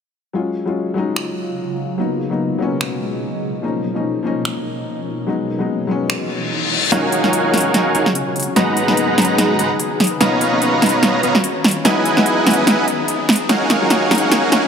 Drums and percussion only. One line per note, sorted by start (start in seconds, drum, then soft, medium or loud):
1.16 finger snap medium
2.81 finger snap medium
4.45 finger snap medium
6.10 finger snap medium
6.92 snare soft
6.92 closed hi-hat medium
7.12 closed hi-hat medium
7.24 snare soft
7.33 closed hi-hat medium
7.54 snare soft
7.54 closed hi-hat soft
7.57 closed hi-hat medium
7.60 closed hi-hat medium
7.74 snare soft
7.74 closed hi-hat medium
7.95 closed hi-hat medium
8.06 snare soft
8.15 closed hi-hat medium
8.36 closed hi-hat soft
8.40 closed hi-hat medium
8.43 closed hi-hat medium
8.56 snare soft
8.56 closed hi-hat medium
8.77 closed hi-hat medium
8.88 snare soft
8.97 closed hi-hat medium
9.18 snare medium
9.18 closed hi-hat soft
9.22 closed hi-hat medium
9.25 closed hi-hat medium
9.38 snare medium
9.38 closed hi-hat medium
9.59 closed hi-hat medium
9.80 closed hi-hat medium
10.00 snare medium
10.00 closed hi-hat soft
10.04 closed hi-hat medium
10.07 closed hi-hat medium
10.21 snare medium
10.21 closed hi-hat medium
10.41 closed hi-hat medium
10.62 closed hi-hat medium
10.82 snare medium
10.82 closed hi-hat soft
10.86 closed hi-hat medium
10.89 closed hi-hat medium
11.03 snare medium
11.03 closed hi-hat medium
11.23 closed hi-hat medium
11.35 snare medium
11.44 closed hi-hat medium
11.64 snare medium
11.64 closed hi-hat soft
11.68 closed hi-hat medium
11.71 closed hi-hat medium
11.85 snare medium
11.85 closed hi-hat medium
12.05 closed hi-hat medium
12.17 snare medium
12.26 closed hi-hat medium
12.47 snare medium
12.47 closed hi-hat soft
12.50 closed hi-hat medium
12.53 closed hi-hat medium
12.67 snare medium
12.67 closed hi-hat medium
12.88 closed hi-hat medium
13.08 closed hi-hat medium
13.29 snare medium
13.29 closed hi-hat soft
13.33 closed hi-hat medium
13.36 closed hi-hat medium
13.49 snare medium
13.49 closed hi-hat medium
13.70 snare medium
13.70 closed hi-hat medium
13.90 snare medium
13.90 closed hi-hat medium
14.11 snare medium
14.11 closed hi-hat soft
14.15 closed hi-hat medium
14.18 closed hi-hat medium
14.32 snare medium
14.32 closed hi-hat medium
14.52 snare medium
14.52 closed hi-hat medium